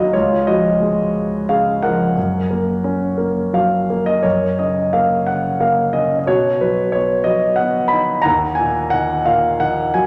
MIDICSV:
0, 0, Header, 1, 2, 480
1, 0, Start_track
1, 0, Key_signature, 6, "major"
1, 0, Tempo, 673401
1, 101, Time_signature, 3, 2, 24, 8
1, 1543, Tempo, 690449
1, 3463, Tempo, 668896
1, 7151, End_track
2, 0, Start_track
2, 0, Title_t, "Grand piano"
2, 0, Program_c, 0, 0
2, 0, Control_c, 0, 64, 127
2, 0, Note_on_c, 0, 39, 49
2, 0, Note_on_c, 0, 51, 41
2, 0, Note_on_c, 0, 54, 48
2, 0, Note_on_c, 0, 58, 46
2, 0, Note_on_c, 0, 66, 44
2, 0, Note_on_c, 0, 70, 50
2, 0, Note_on_c, 0, 71, 52
2, 0, Note_on_c, 0, 75, 61
2, 0, Note_on_c, 0, 77, 70
2, 0, Note_on_c, 0, 78, 67
2, 0, Note_on_c, 0, 80, 66
2, 0, Note_on_c, 0, 82, 73
2, 83, Note_off_c, 0, 51, 0
2, 92, Note_off_c, 0, 54, 0
2, 92, Note_off_c, 0, 75, 0
2, 93, Note_off_c, 0, 66, 0
2, 95, Note_on_c, 0, 73, 71
2, 101, Note_on_c, 0, 37, 53
2, 104, Note_on_c, 0, 65, 51
2, 110, Note_off_c, 0, 39, 0
2, 110, Note_off_c, 0, 77, 0
2, 110, Control_c, 0, 64, 0
2, 111, Note_off_c, 0, 70, 0
2, 113, Note_off_c, 0, 80, 0
2, 115, Note_off_c, 0, 71, 0
2, 115, Note_off_c, 0, 78, 0
2, 115, Note_off_c, 0, 82, 0
2, 116, Note_off_c, 0, 58, 0
2, 227, Control_c, 0, 64, 127
2, 323, Note_off_c, 0, 65, 0
2, 335, Note_on_c, 0, 53, 46
2, 336, Note_on_c, 0, 75, 67
2, 341, Note_on_c, 0, 66, 52
2, 343, Note_off_c, 0, 73, 0
2, 583, Note_on_c, 0, 56, 49
2, 1032, Note_off_c, 0, 66, 0
2, 1062, Note_on_c, 0, 77, 70
2, 1064, Note_on_c, 0, 49, 44
2, 1068, Note_on_c, 0, 68, 54
2, 1080, Note_off_c, 0, 75, 0
2, 1271, Note_off_c, 0, 53, 0
2, 1286, Note_off_c, 0, 77, 0
2, 1289, Note_off_c, 0, 68, 0
2, 1301, Note_on_c, 0, 78, 65
2, 1302, Note_on_c, 0, 70, 54
2, 1316, Note_on_c, 0, 53, 49
2, 1515, Note_off_c, 0, 37, 0
2, 1518, Note_off_c, 0, 56, 0
2, 1532, Note_off_c, 0, 49, 0
2, 1544, Note_off_c, 0, 53, 0
2, 1550, Note_on_c, 0, 42, 60
2, 1553, Control_c, 0, 64, 0
2, 1689, Control_c, 0, 64, 127
2, 1780, Note_on_c, 0, 58, 47
2, 2014, Note_on_c, 0, 61, 51
2, 2236, Note_off_c, 0, 58, 0
2, 2246, Note_on_c, 0, 58, 48
2, 2495, Note_on_c, 0, 54, 44
2, 2500, Note_on_c, 0, 77, 73
2, 2721, Note_off_c, 0, 78, 0
2, 2722, Note_off_c, 0, 70, 0
2, 2739, Note_off_c, 0, 58, 0
2, 2750, Note_on_c, 0, 58, 48
2, 2842, Note_off_c, 0, 77, 0
2, 2861, Note_on_c, 0, 75, 72
2, 2960, Note_off_c, 0, 61, 0
2, 2966, Note_off_c, 0, 42, 0
2, 2972, Note_off_c, 0, 54, 0
2, 2977, Note_on_c, 0, 73, 63
2, 2984, Note_off_c, 0, 58, 0
2, 2986, Note_on_c, 0, 42, 43
2, 2987, Note_on_c, 0, 70, 42
2, 2990, Note_off_c, 0, 75, 0
2, 3000, Control_c, 0, 64, 0
2, 3126, Control_c, 0, 64, 127
2, 3228, Note_on_c, 0, 75, 60
2, 3230, Note_off_c, 0, 73, 0
2, 3234, Note_on_c, 0, 49, 36
2, 3448, Note_off_c, 0, 75, 0
2, 3465, Note_on_c, 0, 77, 67
2, 3470, Note_on_c, 0, 58, 41
2, 3676, Note_off_c, 0, 70, 0
2, 3698, Note_off_c, 0, 49, 0
2, 3706, Note_on_c, 0, 78, 64
2, 3709, Note_on_c, 0, 49, 37
2, 3714, Note_off_c, 0, 77, 0
2, 3939, Note_off_c, 0, 58, 0
2, 3950, Note_on_c, 0, 58, 39
2, 3950, Note_on_c, 0, 77, 64
2, 3956, Note_off_c, 0, 78, 0
2, 4183, Note_on_c, 0, 75, 65
2, 4188, Note_on_c, 0, 61, 43
2, 4199, Note_off_c, 0, 77, 0
2, 4360, Note_off_c, 0, 75, 0
2, 4370, Note_on_c, 0, 75, 47
2, 4400, Note_off_c, 0, 42, 0
2, 4411, Note_off_c, 0, 49, 0
2, 4417, Note_off_c, 0, 58, 0
2, 4422, Note_on_c, 0, 47, 51
2, 4423, Note_off_c, 0, 61, 0
2, 4425, Note_off_c, 0, 75, 0
2, 4430, Note_on_c, 0, 73, 70
2, 4437, Note_on_c, 0, 66, 52
2, 4441, Control_c, 0, 64, 0
2, 4567, Control_c, 0, 64, 127
2, 4652, Note_off_c, 0, 73, 0
2, 4671, Note_on_c, 0, 71, 61
2, 4672, Note_on_c, 0, 54, 41
2, 4894, Note_on_c, 0, 73, 70
2, 4910, Note_on_c, 0, 59, 47
2, 4914, Note_off_c, 0, 71, 0
2, 5116, Note_off_c, 0, 66, 0
2, 5123, Note_on_c, 0, 75, 72
2, 5129, Note_off_c, 0, 54, 0
2, 5139, Note_on_c, 0, 54, 42
2, 5143, Note_off_c, 0, 73, 0
2, 5349, Note_off_c, 0, 75, 0
2, 5351, Note_on_c, 0, 78, 72
2, 5364, Note_off_c, 0, 59, 0
2, 5375, Note_on_c, 0, 59, 46
2, 5581, Note_off_c, 0, 78, 0
2, 5582, Note_on_c, 0, 83, 78
2, 5614, Note_on_c, 0, 63, 49
2, 5815, Note_off_c, 0, 47, 0
2, 5824, Note_on_c, 0, 82, 89
2, 5826, Note_off_c, 0, 54, 0
2, 5834, Note_off_c, 0, 59, 0
2, 5835, Note_on_c, 0, 78, 60
2, 5842, Note_off_c, 0, 83, 0
2, 5843, Note_off_c, 0, 63, 0
2, 5850, Note_on_c, 0, 39, 55
2, 5859, Control_c, 0, 64, 0
2, 5973, Control_c, 0, 64, 127
2, 6063, Note_on_c, 0, 80, 76
2, 6083, Note_off_c, 0, 82, 0
2, 6092, Note_on_c, 0, 46, 43
2, 6306, Note_off_c, 0, 78, 0
2, 6317, Note_on_c, 0, 78, 84
2, 6324, Note_off_c, 0, 80, 0
2, 6340, Note_on_c, 0, 51, 49
2, 6559, Note_off_c, 0, 46, 0
2, 6569, Note_on_c, 0, 77, 75
2, 6570, Note_on_c, 0, 46, 47
2, 6572, Note_off_c, 0, 78, 0
2, 6806, Note_off_c, 0, 51, 0
2, 6816, Note_on_c, 0, 78, 80
2, 6817, Note_on_c, 0, 51, 46
2, 6821, Note_off_c, 0, 77, 0
2, 7045, Note_off_c, 0, 78, 0
2, 7060, Note_on_c, 0, 80, 74
2, 7066, Note_on_c, 0, 54, 48
2, 7151, Note_off_c, 0, 39, 0
2, 7151, Note_off_c, 0, 46, 0
2, 7151, Note_off_c, 0, 51, 0
2, 7151, Note_off_c, 0, 54, 0
2, 7151, Note_off_c, 0, 80, 0
2, 7151, End_track
0, 0, End_of_file